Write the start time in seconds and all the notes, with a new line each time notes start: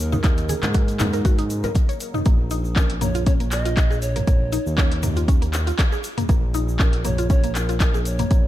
Already playing: D#2 C#3 F#3 A#3 D#4
0.00 A#4, shaker
0.12 D#4, mid tom, high conga, shaker
0.23 D#2 D#4, kick, clap, closed hi-hat, muted conga, shaker
0.37 closed hi-hat, shaker
0.49 G#4, open hi-hat, high conga, shaker
0.63 G#2, clap, closed hi-hat, muted conga, high conga, shaker
0.74 F#4, kick, closed hi-hat, high conga, shaker
0.88 closed hi-hat, shaker
0.99 D#4, clap, mid tom, open hi-hat, muted conga, low conga, shaker
1.13 A#4, closed hi-hat, shaker
1.25 F#4, kick, closed hi-hat, low conga, shaker
1.38 D#4, closed hi-hat, muted conga, shaker
1.50 open hi-hat, shaker
1.64 A#4, closed hi-hat, low conga, shaker
1.75 kick, closed hi-hat, muted conga, high conga, shaker
1.89 C#5, closed hi-hat, shaker
2.00 open hi-hat, shaker
2.14 D#4, mid tom, shaker
2.25 A#1 A#3, kick, closed hi-hat, shaker
2.51 D#4, open hi-hat, shaker
2.65 shaker
2.76 C#4 A#4, kick, clap, shaker
2.90 closed hi-hat
3.01 A#3 C#5, mid tom, open hi-hat, shaker
3.15 F4, closed hi-hat, shaker
3.26 C#4 C#5, kick, closed hi-hat, shaker
3.40 A#3, closed hi-hat, shaker
3.52 D#5, clap, open hi-hat, shaker
3.65 F4, closed hi-hat, shaker
3.77 kick, clap, closed hi-hat, shaker
3.91 G#4, shaker
4.02 C#5, open hi-hat, shaker
4.16 A#3, closed hi-hat, mid tom, shaker
4.27 A#1 A#3, kick, closed hi-hat, shaker
4.52 D#4, open hi-hat, shaker
4.66 D#2, shaker
4.78 C#4, kick, clap, shaker
4.92 closed hi-hat
5.03 A#3, mid tom, open hi-hat, shaker
5.17 F4, closed hi-hat, shaker
5.28 C#4, kick, closed hi-hat, shaker
5.42 A#3, closed hi-hat, shaker
5.53 clap, open hi-hat, shaker
5.67 F4, closed hi-hat, shaker
5.79 kick, clap, closed hi-hat, shaker
5.92 G#4, shaker
6.04 open hi-hat, shaker
6.18 A#3, closed hi-hat, mid tom, shaker
6.29 A#1 A#3, kick, closed hi-hat, shaker
6.54 D#4, open hi-hat, shaker
6.69 shaker
6.79 C#4 A#4, kick, clap, shaker
6.93 closed hi-hat
7.05 A#3 C#5, mid tom, open hi-hat, shaker
7.18 F4, closed hi-hat, shaker
7.30 C#4 C#5, kick, closed hi-hat, shaker
7.44 A#3, closed hi-hat, shaker
7.55 A#4, clap, open hi-hat, shaker
7.69 F4, closed hi-hat, shaker
7.80 A#4, kick, clap, closed hi-hat, shaker
7.94 G#4, shaker
8.05 C#5, open hi-hat, shaker
8.19 A#3, closed hi-hat, mid tom, shaker
8.31 A#1 A#3, kick, closed hi-hat, shaker